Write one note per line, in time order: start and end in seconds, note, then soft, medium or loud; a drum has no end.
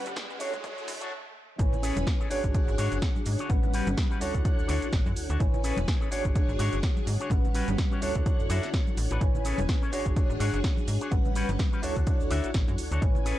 0.00 0.36 G3 medium
0.00 0.40 G3 medium
0.00 0.36 C#4 medium
0.00 0.39 C#4 medium
0.00 0.37 B4 medium
0.00 0.39 B4 medium
0.00 0.36 F#5 medium
0.00 1.09 F#5 medium
0.00 riser medium
0.06 0.14 G1 loud
0.06 closed hi-hat soft
0.06 shaker soft
0.16 kick loud
0.16 snare loud
0.16 closed hi-hat medium
0.16 shaker soft
0.30 muted clean electric guitar stroke medium
0.30 shaker soft
0.39 0.51 D2 soft
0.39 1.11 D4 medium
0.39 0.79 D4 loud
0.39 1.11 E4 medium
0.39 1.11 F#4 medium
0.39 0.80 F#4 medium
0.39 1.12 A4 medium
0.39 1.11 C#5 medium
0.39 1.12 C#5 loud
0.39 0.80 C#5 loud
0.39 open hi-hat loud
0.39 shaker medium
0.54 0.62 D2 medium
0.54 kick medium
0.54 closed hi-hat medium
0.54 shaker soft
0.64 kick loud
0.64 closed hi-hat medium
0.64 shaker soft
0.78 0.86 F#2 soft
0.78 shaker soft
0.88 0.98 F#2 loud
0.88 muted clean electric guitar stroke soft
0.88 open hi-hat loud
0.88 shaker medium
1.01 1.12 D4 medium
1.01 1.12 F#4 medium
1.01 1.12 C#5 loud
1.01 closed hi-hat medium
1.01 shaker soft
1.58 1.91 A1 loud
1.58 2.30 C#4 medium
1.58 2.26 E4 medium
1.58 2.27 B4 medium
1.58 2.30 B4 medium
1.58 2.27 C#5 medium
1.58 2.26 G#5 medium
1.58 2.30 G#5 medium
1.58 kick loud
1.58 closed hi-hat medium
1.58 low conga medium
1.58 maracas soft
1.58 shaker soft
1.72 low conga medium
1.72 maracas soft
1.72 shaker soft
1.83 1.96 C#4 loud
1.83 1.96 G#4 loud
1.83 1.97 A4 medium
1.83 1.97 B4 loud
1.83 open hi-hat loud
1.83 maracas loud
1.83 shaker medium
1.96 2.04 E1 loud
1.96 closed hi-hat medium
1.96 high conga medium
1.96 maracas soft
1.96 shaker soft
2.07 kick loud
2.07 snare loud
2.07 closed hi-hat medium
2.07 shaker soft
2.20 2.30 C#4 medium
2.20 2.30 G#4 medium
2.20 2.30 A4 medium
2.20 2.31 B4 medium
2.20 maracas soft
2.20 shaker soft
2.30 2.41 G#1 soft
2.30 3.45 D4 medium
2.30 2.70 D4 medium
2.30 3.48 D4 medium
2.30 3.45 F#4 medium
2.30 2.70 F#4 medium
2.30 3.49 G#4 medium
2.30 2.70 G#4 medium
2.30 3.46 G#4 medium
2.30 3.49 C#5 medium
2.30 3.46 C#5 loud
2.30 2.70 C#5 medium
2.30 3.49 F#5 medium
2.30 open hi-hat loud
2.30 shaker medium
2.30 maracas loud
2.44 2.52 G#1 medium
2.44 kick medium
2.44 closed hi-hat medium
2.44 shaker soft
2.44 maracas soft
2.54 kick loud
2.54 closed hi-hat medium
2.54 maracas medium
2.54 shaker soft
2.68 2.76 G#1 medium
2.68 maracas soft
2.68 shaker soft
2.78 2.89 G#2 medium
2.78 2.97 D4 loud
2.78 2.97 F#4 medium
2.78 2.97 G#4 loud
2.78 2.97 C#5 loud
2.78 open hi-hat loud
2.78 maracas loud
2.78 shaker medium
2.92 3.00 F#1 medium
2.92 closed hi-hat medium
2.92 maracas soft
2.92 shaker soft
3.02 kick loud
3.02 snare loud
3.02 closed hi-hat medium
3.02 shaker soft
3.15 muted clean electric guitar stroke soft
3.15 high conga medium
3.15 shaker soft
3.15 maracas soft
3.26 3.36 G#2 medium
3.26 open hi-hat loud
3.26 shaker medium
3.26 maracas loud
3.39 3.50 D4 medium
3.39 3.50 F#4 medium
3.39 3.50 G#4 medium
3.39 3.50 C#5 medium
3.39 closed hi-hat medium
3.39 shaker soft
3.39 maracas soft
3.49 3.82 A1 medium
3.49 4.17 G3 medium
3.49 4.21 G3 medium
3.49 4.17 C#4 medium
3.49 4.21 C#4 medium
3.49 4.21 B4 medium
3.49 4.17 B4 medium
3.49 4.17 F#5 medium
3.49 5.39 F#5 medium
3.49 kick loud
3.49 closed hi-hat medium
3.49 low conga medium
3.49 shaker soft
3.49 maracas medium
3.63 low conga loud
3.63 shaker soft
3.63 maracas soft
3.73 3.87 C#4 loud
3.73 3.87 F#4 medium
3.73 3.87 G4 loud
3.73 3.87 B4 loud
3.73 open hi-hat loud
3.73 maracas medium
3.73 shaker medium
3.87 3.95 G1 loud
3.87 closed hi-hat medium
3.87 high conga medium
3.87 shaker soft
3.87 maracas soft
3.97 kick loud
3.97 snare loud
3.97 closed hi-hat medium
3.97 shaker soft
3.97 maracas medium
4.10 4.20 C#4 medium
4.10 4.20 F#4 medium
4.10 4.21 G4 medium
4.10 4.22 B4 loud
4.10 shaker soft
4.10 maracas soft
4.20 4.32 D2 soft
4.20 4.60 D4 loud
4.20 5.39 D4 medium
4.20 5.36 E4 medium
4.20 5.36 F#4 medium
4.20 4.60 F#4 medium
4.20 4.61 A4 medium
4.20 5.36 A4 medium
4.20 5.39 C#5 medium
4.20 4.61 C#5 medium
4.20 5.37 C#5 loud
4.20 open hi-hat loud
4.20 shaker medium
4.20 maracas loud
4.35 4.43 D2 medium
4.35 kick medium
4.35 closed hi-hat medium
4.35 shaker soft
4.35 maracas soft
4.45 kick loud
4.45 closed hi-hat medium
4.45 shaker soft
4.45 maracas medium
4.58 4.67 D2 soft
4.58 shaker soft
4.58 maracas soft
4.68 4.79 D2 loud
4.68 4.87 D4 loud
4.68 4.87 F#4 medium
4.68 4.87 A4 loud
4.68 4.88 C#5 loud
4.68 open hi-hat loud
4.68 maracas loud
4.68 shaker medium
4.82 4.91 A1 soft
4.82 closed hi-hat medium
4.82 shaker soft
4.82 maracas soft
4.92 5.03 A1 loud
4.92 kick loud
4.92 snare loud
4.92 closed hi-hat medium
4.92 maracas medium
4.92 shaker soft
5.06 5.14 F#2 loud
5.06 muted clean electric guitar stroke soft
5.06 high conga medium
5.06 shaker soft
5.06 maracas soft
5.16 5.27 D2 soft
5.16 open hi-hat loud
5.16 maracas loud
5.16 shaker medium
5.29 5.38 D2 medium
5.29 5.40 D4 medium
5.29 5.40 F#4 medium
5.29 5.40 A4 medium
5.29 5.40 C#5 medium
5.29 closed hi-hat medium
5.29 maracas soft
5.29 shaker soft
5.40 5.72 A1 loud
5.40 6.11 C#4 medium
5.40 6.07 E4 medium
5.40 6.11 B4 medium
5.40 6.08 B4 medium
5.40 6.08 C#5 medium
5.40 6.08 G#5 medium
5.40 6.11 G#5 medium
5.40 kick loud
5.40 closed hi-hat medium
5.40 low conga medium
5.40 maracas medium
5.40 shaker soft
5.54 low conga medium
5.54 maracas soft
5.54 shaker soft
5.63 5.77 C#4 loud
5.63 5.77 G#4 loud
5.63 5.78 A4 loud
5.63 5.78 B4 loud
5.63 open hi-hat loud
5.63 maracas medium
5.63 shaker medium
5.77 5.85 E1 loud
5.77 closed hi-hat medium
5.77 high conga loud
5.77 maracas soft
5.77 shaker soft
5.88 kick loud
5.88 snare loud
5.88 closed hi-hat medium
5.88 maracas soft
5.88 shaker soft
6.01 6.11 C#4 medium
6.01 6.11 G#4 medium
6.01 6.11 A4 medium
6.01 6.12 B4 medium
6.01 maracas soft
6.01 shaker soft
6.11 6.22 G#1 soft
6.11 6.51 D4 medium
6.11 7.26 D4 medium
6.11 7.29 D4 medium
6.11 7.27 F#4 medium
6.11 6.51 F#4 medium
6.11 6.51 G#4 medium
6.11 7.30 G#4 medium
6.11 7.27 G#4 medium
6.11 7.30 C#5 medium
6.11 6.51 C#5 loud
6.11 7.27 C#5 loud
6.11 7.30 F#5 medium
6.11 open hi-hat loud
6.11 maracas medium
6.11 shaker medium
6.25 6.33 G#1 medium
6.25 kick medium
6.25 closed hi-hat medium
6.25 maracas soft
6.25 shaker soft
6.35 kick loud
6.35 closed hi-hat medium
6.35 maracas medium
6.35 shaker soft
6.49 6.57 G#1 medium
6.49 shaker soft
6.49 maracas soft
6.59 6.70 G#2 medium
6.59 6.78 D4 loud
6.59 6.78 F#4 loud
6.59 6.78 G#4 loud
6.59 6.78 C#5 loud
6.59 open hi-hat loud
6.59 shaker medium
6.59 maracas medium
6.73 6.81 F#1 medium
6.73 closed hi-hat soft
6.73 maracas soft
6.73 shaker soft
6.83 kick loud
6.83 snare loud
6.83 closed hi-hat medium
6.83 shaker soft
6.83 maracas medium
6.96 muted clean electric guitar stroke soft
6.96 high conga medium
6.96 maracas soft
6.96 shaker soft
7.07 7.17 G#2 medium
7.07 open hi-hat loud
7.07 maracas medium
7.07 shaker medium
7.20 7.31 D4 medium
7.20 7.31 F#4 medium
7.20 7.31 G#4 medium
7.20 7.31 C#5 medium
7.20 closed hi-hat medium
7.20 maracas soft
7.20 shaker soft
7.30 7.63 A1 loud
7.30 7.98 G3 medium
7.30 8.02 G3 medium
7.30 7.98 C#4 medium
7.30 8.02 C#4 medium
7.30 8.02 B4 medium
7.30 7.98 B4 medium
7.30 7.98 F#5 medium
7.30 9.19 F#5 medium
7.30 kick loud
7.30 closed hi-hat medium
7.30 low conga medium
7.30 maracas soft
7.30 shaker soft
7.44 low conga medium
7.44 maracas soft
7.44 shaker soft
7.54 7.68 C#4 loud
7.54 7.68 F#4 loud
7.54 7.68 G4 loud
7.54 7.68 B4 loud
7.54 open hi-hat loud
7.54 maracas medium
7.54 shaker medium
7.68 7.76 G1 loud
7.68 closed hi-hat medium
7.68 high conga loud
7.68 shaker soft
7.68 maracas soft
7.78 kick loud
7.78 snare loud
7.78 closed hi-hat medium
7.78 maracas soft
7.78 shaker soft
7.91 8.02 C#4 medium
7.91 8.01 F#4 medium
7.91 8.02 G4 medium
7.91 8.02 C#5 medium
7.91 maracas soft
7.91 shaker soft
8.01 8.13 D2 soft
8.01 8.41 D4 medium
8.01 9.20 D4 medium
8.01 9.17 E4 medium
8.01 9.17 F#4 medium
8.01 8.42 F#4 medium
8.01 9.17 A4 medium
8.01 8.42 A4 medium
8.01 9.20 C#5 medium
8.01 9.17 C#5 loud
8.01 8.42 C#5 loud
8.01 open hi-hat loud
8.01 maracas medium
8.01 shaker medium
8.15 8.24 D2 medium
8.15 kick medium
8.15 closed hi-hat medium
8.15 maracas soft
8.15 shaker soft
8.26 kick loud
8.26 closed hi-hat medium
8.26 maracas medium
8.26 shaker soft
8.40 8.48 F#2 soft
8.40 maracas soft
8.40 shaker soft
8.50 8.60 F#2 loud
8.50 8.68 D4 loud
8.50 8.68 F#4 medium
8.50 8.69 A4 loud
8.50 8.69 E5 loud
8.50 open hi-hat loud
8.50 maracas medium
8.50 shaker medium
8.62 snare soft
8.62 closed hi-hat soft
8.62 maracas soft
8.62 shaker soft
8.73 kick loud
8.73 snare loud
8.73 closed hi-hat medium
8.73 maracas medium
8.73 shaker soft
8.86 muted clean electric guitar stroke soft
8.86 high conga medium
8.86 maracas soft
8.86 shaker soft
8.97 9.08 A1 loud
8.97 open hi-hat loud
8.97 maracas medium
8.97 shaker medium
9.11 9.19 A1 loud
9.11 9.21 D4 medium
9.11 9.21 F#4 medium
9.11 9.22 A4 medium
9.11 9.22 B4 medium
9.11 closed hi-hat medium
9.11 shaker soft
9.11 maracas soft
9.20 9.92 C#4 medium
9.20 9.88 E4 medium
9.20 9.92 B4 medium
9.20 9.89 B4 medium
9.20 9.89 C#5 medium
9.20 9.92 G#5 medium
9.20 9.88 G#5 medium
9.20 kick loud
9.20 closed hi-hat medium
9.20 low conga medium
9.20 maracas medium
9.20 shaker soft
9.35 low conga medium
9.35 maracas soft
9.35 shaker soft
9.45 9.58 C#4 loud
9.45 9.59 G#4 medium
9.45 9.59 A4 loud
9.45 9.59 B4 loud
9.45 open hi-hat loud
9.45 maracas medium
9.45 shaker medium
9.58 9.66 E1 loud
9.58 closed hi-hat medium
9.58 high conga loud
9.58 maracas soft
9.58 shaker soft
9.69 kick loud
9.69 snare loud
9.69 closed hi-hat medium
9.69 shaker soft
9.82 9.92 C#4 medium
9.82 9.92 G#4 medium
9.82 9.92 A4 medium
9.82 9.92 C#5 medium
9.82 maracas soft
9.82 shaker soft
9.92 10.04 G#1 soft
9.92 11.07 D4 medium
9.92 10.32 D4 medium
9.92 11.11 D4 medium
9.92 11.07 F#4 medium
9.92 10.32 F#4 medium
9.92 10.32 G#4 medium
9.92 11.08 G#4 medium
9.92 11.11 G#4 medium
9.92 11.11 C#5 medium
9.92 11.08 C#5 loud
9.92 10.32 C#5 medium
9.92 12.99 F#5 medium
9.92 open hi-hat loud
9.92 maracas medium
9.92 shaker medium
10.06 10.14 G#1 medium
10.06 kick medium
10.06 closed hi-hat medium
10.06 shaker soft
10.06 maracas soft
10.16 kick loud
10.16 closed hi-hat medium
10.16 maracas soft
10.16 shaker soft
10.29 10.38 G#1 medium
10.29 maracas soft
10.29 shaker soft
10.40 10.51 G#2 medium
10.40 10.59 D4 loud
10.40 10.59 F#4 medium
10.40 10.59 G#4 loud
10.40 10.59 C#5 loud
10.40 open hi-hat loud
10.40 shaker medium
10.40 maracas medium
10.53 10.61 F#1 medium
10.53 closed hi-hat soft
10.53 maracas soft
10.53 shaker soft
10.64 kick loud
10.64 snare loud
10.64 closed hi-hat medium
10.64 shaker soft
10.64 maracas soft
10.77 muted clean electric guitar stroke soft
10.77 high conga medium
10.77 maracas soft
10.77 shaker soft
10.88 10.98 G#2 medium
10.88 open hi-hat loud
10.88 shaker medium
10.88 maracas medium
11.01 11.11 D4 medium
11.01 11.12 F#4 medium
11.01 11.12 G#4 medium
11.01 11.12 C#5 medium
11.01 closed hi-hat medium
11.01 shaker soft
11.01 maracas soft
11.11 11.44 A1 medium
11.11 11.82 G3 medium
11.11 11.79 G3 medium
11.11 11.79 C#4 medium
11.11 11.82 C#4 medium
11.11 11.82 B4 medium
11.11 11.79 B4 medium
11.11 11.79 F#5 medium
11.11 kick loud
11.11 closed hi-hat medium
11.11 low conga medium
11.11 maracas medium
11.11 shaker soft
11.25 low conga medium
11.25 maracas soft
11.25 shaker soft
11.35 11.49 C#4 loud
11.35 11.49 F#4 medium
11.35 11.49 G4 loud
11.35 11.49 B4 loud
11.35 open hi-hat loud
11.35 maracas medium
11.35 shaker medium
11.49 11.57 G1 loud
11.49 closed hi-hat medium
11.49 high conga medium
11.49 maracas soft
11.49 shaker soft
11.59 muted clean electric guitar stroke soft
11.59 kick loud
11.59 snare loud
11.59 closed hi-hat medium
11.59 shaker soft
11.72 11.82 C#4 medium
11.72 11.82 F#4 medium
11.72 11.83 G4 medium
11.72 11.83 B4 medium
11.72 shaker soft
11.72 maracas soft
11.82 11.94 D2 soft
11.82 12.22 D4 medium
11.82 13.01 D4 medium
11.82 12.98 E4 medium
11.82 12.98 F#4 medium
11.82 12.22 F#4 medium
11.82 12.98 A4 medium
11.82 12.23 A4 medium
11.82 13.01 C#5 medium
11.82 12.98 C#5 loud
11.82 12.23 C#5 medium
11.82 open hi-hat loud
11.82 maracas medium
11.82 shaker medium
11.96 12.04 D2 medium
11.96 kick medium
11.96 closed hi-hat medium
11.96 maracas soft
11.96 shaker soft
12.06 kick loud
12.06 closed hi-hat medium
12.06 maracas soft
12.06 shaker soft
12.20 12.29 D2 soft
12.20 maracas soft
12.20 shaker soft
12.30 12.41 D2 loud
12.30 12.49 D4 loud
12.30 12.49 F#4 loud
12.30 12.50 A4 medium
12.30 12.50 E5 loud
12.30 open hi-hat loud
12.30 maracas medium
12.30 shaker medium
12.44 12.52 A1 soft
12.44 closed hi-hat medium
12.44 maracas soft
12.44 shaker soft
12.54 12.65 A1 loud
12.54 kick loud
12.54 snare loud
12.54 closed hi-hat medium
12.54 shaker soft
12.54 maracas medium
12.68 12.76 F#2 loud
12.68 muted clean electric guitar stroke soft
12.68 high conga medium
12.68 maracas soft
12.68 shaker soft
12.78 12.89 D2 soft
12.78 open hi-hat loud
12.78 maracas medium
12.78 shaker medium
12.91 13.00 D2 medium
12.91 13.02 D4 medium
12.91 13.02 F#4 medium
12.91 13.02 A4 medium
12.91 13.02 C#5 medium
12.91 closed hi-hat medium
12.91 maracas soft
12.91 shaker soft
13.01 13.34 A1 loud
13.01 13.39 C#4 medium
13.01 13.39 E4 medium
13.01 13.39 B4 medium
13.01 13.39 C#5 medium
13.01 13.39 G#5 medium
13.01 kick loud
13.01 closed hi-hat medium
13.01 low conga medium
13.01 shaker soft
13.01 maracas medium
13.15 low conga medium
13.15 maracas soft
13.15 shaker soft
13.25 13.39 C#4 loud
13.25 13.39 G#4 loud
13.25 13.39 A4 loud
13.25 13.39 B4 loud
13.25 open hi-hat loud
13.25 maracas loud
13.25 shaker medium